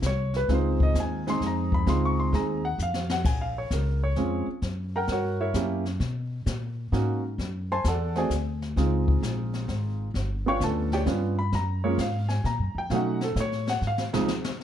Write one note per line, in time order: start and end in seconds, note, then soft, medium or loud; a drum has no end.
0.02 0.47 C2 medium
0.02 kick soft
0.02 snare medium
0.02 hi-hat pedal soft
0.06 0.35 C#5 medium
0.34 0.50 B4 medium
0.34 snare soft
0.48 0.93 C#2 medium
0.48 1.20 G#3 medium
0.48 1.20 C4 medium
0.48 1.20 D#4 medium
0.48 1.21 F4 medium
0.48 brush sweep soft
0.48 kick soft
0.48 snare soft
0.54 0.82 C5 medium
0.80 0.96 D#5 medium
0.80 kick medium
0.94 1.39 D#2 medium
0.94 kick soft
0.94 snare medium
0.94 hi-hat pedal soft
1.00 1.28 G#5 medium
1.27 1.84 G#3 medium
1.27 1.84 C4 medium
1.27 1.85 D#4 medium
1.27 1.85 G#4 medium
1.27 1.42 C6 loud
1.27 snare soft
1.40 1.85 F2 medium
1.40 kick soft
1.40 snare soft
1.47 1.74 A#5 medium
1.72 1.88 B5 medium
1.72 kick medium
1.86 2.31 C#2 medium
1.86 2.31 G#3 medium
1.86 2.32 C4 medium
1.86 2.32 D#4 medium
1.86 2.32 F4 medium
1.86 2.03 C6 medium
1.86 brush sweep soft
1.86 kick soft
1.86 snare soft
2.05 2.19 C#6 medium
2.20 2.34 C6 medium
2.33 2.77 D#2 medium
2.33 2.61 G#3 medium
2.33 2.61 C4 medium
2.33 2.62 D#4 medium
2.33 2.61 G#4 medium
2.33 2.64 A#5 medium
2.33 kick soft
2.33 snare soft
2.65 2.79 F#5 medium
2.78 3.23 F2 medium
2.78 hi-hat pedal medium
2.83 3.11 F5 medium
2.94 snare medium
3.10 3.25 F#5 loud
3.10 snare medium
3.24 3.69 A#1 medium
3.24 3.40 G#5 medium
3.24 brush sweep soft
3.24 kick medium
3.24 snare soft
3.24 crash medium
3.41 3.56 F5 medium
3.58 3.72 C#5 medium
3.70 4.15 C#2 medium
3.70 4.03 A#4 soft
3.70 kick soft
3.70 snare soft
3.70 hi-hat pedal medium
4.04 4.46 C#5 medium
4.15 4.45 F2 medium
4.15 4.45 G#3 medium
4.15 4.45 C4 soft
4.15 4.45 C#4 soft
4.15 4.45 F4 medium
4.15 kick soft
4.15 snare soft
4.48 muted upright bass stroke soft
4.62 5.07 F#2 medium
4.62 brush sweep soft
4.62 kick soft
4.62 snare soft
4.96 5.10 A#4 medium
4.96 5.09 F#5 medium
4.96 5.10 G5 medium
4.96 5.09 A#5 medium
5.08 5.53 G2 medium
5.08 kick soft
5.08 snare soft
5.12 5.41 F#4 medium
5.12 5.39 A#4 medium
5.12 5.39 C#5 medium
5.12 5.41 F#5 medium
5.41 5.54 E4 medium
5.41 5.55 A#4 medium
5.41 5.55 C#5 medium
5.41 5.55 E5 medium
5.54 5.99 F#2 medium
5.54 5.83 A#3 medium
5.54 5.83 C#4 medium
5.54 5.83 E4 medium
5.54 5.84 G4 medium
5.54 kick soft
5.54 snare medium
5.54 hi-hat pedal medium
5.85 snare soft
6.00 6.45 B2 medium
6.00 brush sweep soft
6.00 kick soft
6.00 snare soft
6.46 6.91 A#2 medium
6.46 kick soft
6.46 snare medium
6.46 hi-hat pedal medium
6.92 7.37 G#2 medium
6.92 7.21 A#3 medium
6.92 7.21 C#4 medium
6.92 7.21 D#4 medium
6.92 7.21 F#4 medium
6.92 kick soft
6.92 snare soft
7.38 7.83 F#2 medium
7.38 brush sweep soft
7.38 kick soft
7.38 snare soft
7.72 7.85 C5 medium
7.72 7.85 G#5 medium
7.72 7.85 A5 medium
7.72 7.85 C6 loud
7.84 8.29 E2 medium
7.84 8.17 D5 medium
7.84 8.17 F#5 medium
7.84 8.17 A5 medium
7.84 kick soft
7.84 snare medium
7.84 hi-hat pedal medium
7.88 8.17 A4 medium
8.15 8.29 A3 medium
8.15 8.29 C4 medium
8.15 8.30 F#4 medium
8.15 8.30 G#4 medium
8.15 8.32 C5 medium
8.15 8.32 D5 medium
8.15 8.31 G#5 medium
8.15 snare soft
8.30 8.75 D2 medium
8.30 kick soft
8.30 snare medium
8.30 hi-hat pedal soft
8.62 snare soft
8.76 9.21 C#2 medium
8.76 10.06 G#3 medium
8.76 10.06 C4 soft
8.76 10.06 D#4 medium
8.76 10.07 F4 medium
8.76 brush sweep soft
8.76 kick soft
8.76 snare soft
9.08 kick medium
9.22 9.67 A#1 medium
9.22 kick soft
9.22 snare medium
9.22 hi-hat pedal soft
9.54 snare soft
9.68 10.13 G#1 medium
9.68 kick soft
9.68 snare soft
10.14 10.59 G1 medium
10.14 brush sweep soft
10.14 kick soft
10.14 snare soft
10.46 11.04 B3 medium
10.46 11.04 C#4 medium
10.46 11.04 D4 medium
10.46 11.05 F4 medium
10.46 10.62 C#5 medium
10.46 10.62 F5 medium
10.46 10.61 G5 medium
10.46 10.61 C#6 loud
10.60 11.05 D2 medium
10.60 10.93 A4 medium
10.60 10.92 A5 medium
10.60 kick soft
10.60 snare medium
10.60 hi-hat pedal soft
10.92 11.02 G4 medium
10.92 11.02 C#5 medium
10.92 11.02 D5 medium
10.92 11.02 G5 medium
10.92 snare soft
11.06 11.51 G2 medium
11.06 11.35 B3 medium
11.06 11.35 C#4 medium
11.06 11.35 D4 medium
11.06 11.35 F4 medium
11.06 kick soft
11.06 snare soft
11.39 11.53 B5 loud
11.52 11.97 F#2 medium
11.52 11.84 A#5 medium
11.52 brush sweep soft
11.52 kick soft
11.52 snare soft
11.84 11.97 G#3 medium
11.84 11.97 A#3 medium
11.84 11.97 C#4 medium
11.84 11.98 F4 medium
11.84 11.98 C#5 medium
11.98 12.43 G#2 medium
11.98 12.30 F5 medium
11.98 kick soft
11.98 snare medium
11.98 hi-hat pedal soft
12.29 12.43 G#5 medium
12.29 snare soft
12.44 12.61 A#2 medium
12.44 12.76 A#5 medium
12.44 kick soft
12.44 snare soft
12.59 12.74 F#2 medium
12.75 12.89 F2 medium
12.75 12.91 G5 medium
12.90 13.35 B2 medium
12.90 13.19 F#3 medium
12.90 13.19 A3 medium
12.90 13.19 C#4 medium
12.90 13.20 D#4 medium
12.90 12.94 F5 medium
12.90 brush sweep soft
12.90 kick soft
12.90 snare soft
12.95 13.23 F#5 medium
13.21 13.37 A4 medium
13.21 snare soft
13.35 13.81 A2 medium
13.35 kick soft
13.35 snare medium
13.35 hi-hat pedal soft
13.40 13.69 C#5 medium
13.52 snare soft
13.67 13.83 F#5 loud
13.67 snare soft
13.81 14.11 G#2 medium
13.81 snare soft
13.87 14.05 F5 medium
13.98 snare medium
14.13 14.27 C#2 medium
14.13 14.27 F3 medium
14.13 14.27 G#3 medium
14.13 14.27 C4 medium
14.13 14.27 D#4 medium
14.13 muted upright bass stroke soft
14.13 snare medium
14.28 snare medium
14.44 snare medium